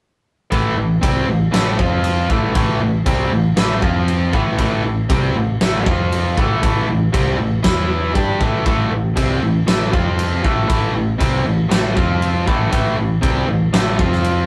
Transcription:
0.51 fingered electric bass A1, overdriven electric guitar A2 E3 A3, kick, crash
0.77 fingered electric bass A1, overdriven electric guitar A2 E3
1.02 fingered electric bass C2, overdriven electric guitar C3 G3 C4, kick, crash
1.28 fingered electric bass A1, overdriven electric guitar A2 E3
1.52 fingered electric bass A1, overdriven electric guitar A2 E3 A3, snare, crash
1.78 fingered electric bass F2, overdriven electric guitar F3 C4 F4, kick
2.04 crash
2.29 fingered electric bass A1, overdriven electric guitar A2 E3 A3, kick
2.55 fingered electric bass A1, overdriven electric guitar A2 E3 A3, kick, crash
2.80 fingered electric bass A1, overdriven electric guitar A2 E3
3.06 fingered electric bass C2, overdriven electric guitar C3 G3 C4, kick, crash
3.31 fingered electric bass A1, overdriven electric guitar A2 E3
3.56 fingered electric bass A1, overdriven electric guitar A2 E3 A3, snare, crash
3.82 fingered electric bass F2, overdriven electric guitar F3 C4 F4, kick
4.08 crash
4.33 fingered electric bass A1, overdriven electric guitar A2 E3 A3, kick
4.58 fingered electric bass A1, overdriven electric guitar A2 E3 A3, kick, crash
4.84 fingered electric bass A1, overdriven electric guitar A2 E3
5.10 fingered electric bass C2, overdriven electric guitar C3 G3 C4, kick, crash
5.35 fingered electric bass A1, overdriven electric guitar A2 E3
5.61 fingered electric bass A1, overdriven electric guitar A2 E3 A3, snare, crash
5.86 fingered electric bass F2, overdriven electric guitar F3 C4 F4, kick
6.12 crash
6.37 fingered electric bass A1, overdriven electric guitar A2 E3 A3, kick
6.62 fingered electric bass A1, overdriven electric guitar A2 E3 A3, kick, crash
6.88 fingered electric bass A1, overdriven electric guitar A2 E3
7.13 fingered electric bass C2, overdriven electric guitar C3 G3 C4, kick, crash
7.38 fingered electric bass A1, overdriven electric guitar A2 E3
7.63 fingered electric bass E2, overdriven electric guitar E3 B3 E4, kick, snare, crash
8.14 fingered electric bass G2, overdriven electric guitar G3 D4 G4, kick, crash
8.40 fingered electric bass A1, overdriven electric guitar A2 E3 A3, kick
8.65 fingered electric bass A1, overdriven electric guitar A2 E3 A3, kick, crash
8.91 fingered electric bass A1, overdriven electric guitar A2 E3
9.16 fingered electric bass C2, overdriven electric guitar C3 G3 C4, kick, crash
9.42 fingered electric bass A1, overdriven electric guitar A2 E3
9.67 fingered electric bass A1, overdriven electric guitar A2 E3 A3, snare, crash
9.92 fingered electric bass F2, overdriven electric guitar F3 C4 F4, kick
10.19 crash
10.44 fingered electric bass A1, overdriven electric guitar A2 E3 A3, kick
10.68 fingered electric bass A1, overdriven electric guitar A2 E3 A3, kick, crash
10.94 fingered electric bass A1, overdriven electric guitar A2 E3
11.19 fingered electric bass C2, overdriven electric guitar C3 G3 C4, kick, crash
11.45 fingered electric bass A1, overdriven electric guitar A2 E3
11.69 fingered electric bass A1, overdriven electric guitar A2 E3 A3, snare, crash
11.95 fingered electric bass F2, overdriven electric guitar F3 C4 F4, kick
12.22 crash
12.47 fingered electric bass A1, overdriven electric guitar A2 E3 A3, kick
12.71 fingered electric bass A1, overdriven electric guitar A2 E3 A3, kick, crash
12.97 fingered electric bass A1, overdriven electric guitar A2 E3
13.22 fingered electric bass C2, overdriven electric guitar C3 G3 C4, kick, crash
13.47 fingered electric bass A1, overdriven electric guitar A2 E3
13.73 fingered electric bass A1, overdriven electric guitar A2 E3 A3, snare, crash
13.98 fingered electric bass F2, overdriven electric guitar F3 C4 F4, kick
14.12 snare
14.24 crash

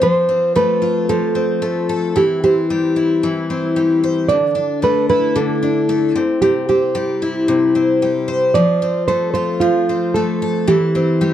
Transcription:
Already playing: twelve-string acoustic guitar C4 C5
0.02 twelve-string acoustic guitar F3, nylon-string guitar C5
0.29 twelve-string acoustic guitar C4
0.56 twelve-string acoustic guitar A3, nylon-string guitar B4
0.82 twelve-string acoustic guitar F4
1.09 twelve-string acoustic guitar F3, nylon-string guitar A4
1.35 twelve-string acoustic guitar C4
1.62 twelve-string acoustic guitar A3
1.89 twelve-string acoustic guitar A4
2.16 twelve-string acoustic guitar E3, nylon-string guitar G4
2.44 twelve-string acoustic guitar C4, nylon-string guitar G4
2.70 twelve-string acoustic guitar G3
2.96 twelve-string acoustic guitar E4
3.23 twelve-string acoustic guitar E3
3.50 twelve-string acoustic guitar C4
3.76 twelve-string acoustic guitar G3
4.04 twelve-string acoustic guitar C5
4.29 twelve-string acoustic guitar D3, nylon-string guitar D5
4.55 twelve-string acoustic guitar D4
4.82 twelve-string acoustic guitar A3, nylon-string guitar B4
5.09 twelve-string acoustic guitar E4, nylon-string guitar B4
5.36 twelve-string acoustic guitar D3, nylon-string guitar A4
5.63 twelve-string acoustic guitar D4
5.89 twelve-string acoustic guitar A3
6.16 twelve-string acoustic guitar C3
6.42 twelve-string acoustic guitar C3, nylon-string guitar G4
6.69 twelve-string acoustic guitar C4, nylon-string guitar G4
6.95 twelve-string acoustic guitar G3
7.22 twelve-string acoustic guitar E4
7.48 twelve-string acoustic guitar C3
7.75 twelve-string acoustic guitar C4
8.02 twelve-string acoustic guitar G3
8.28 twelve-string acoustic guitar C5
8.54 twelve-string acoustic guitar F3, nylon-string guitar D5
8.82 twelve-string acoustic guitar C4
9.08 twelve-string acoustic guitar A3, nylon-string guitar C5
9.34 twelve-string acoustic guitar F4, nylon-string guitar C5
9.60 twelve-string acoustic guitar F3, nylon-string guitar F4
9.89 twelve-string acoustic guitar C4
10.14 twelve-string acoustic guitar A3, nylon-string guitar A4
10.42 twelve-string acoustic guitar A4
10.68 twelve-string acoustic guitar E3, nylon-string guitar G4
10.95 twelve-string acoustic guitar C4
11.21 twelve-string acoustic guitar G3

